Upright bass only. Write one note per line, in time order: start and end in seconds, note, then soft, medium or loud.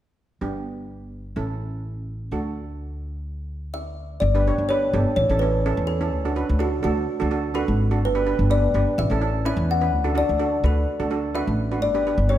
0.41 1.35 G1 medium
1.36 2.30 A1 medium
2.31 4.18 D2 medium
4.22 4.53 G1 medium
4.58 4.89 G1 medium
4.93 5.04 G1 medium
5.16 5.28 A1 medium
5.29 5.71 A1 medium
5.77 6.12 E2 medium
6.12 6.44 D2 loud
6.49 6.79 D2 medium
6.84 7.05 D2 medium
7.21 7.62 D2 medium
7.68 8.03 G#1 medium
8.03 8.34 G1 medium
8.39 8.69 G1 medium
8.74 8.85 G1 medium
8.98 9.09 A1 loud
9.10 9.51 A1 medium
9.57 9.92 E2 medium
9.92 10.24 D2 medium
10.29 10.59 D2 medium
10.64 10.84 D2 medium
11.00 11.41 D2 medium
11.47 11.82 A1 medium
11.82 12.13 G1 medium
12.18 12.38 G1 medium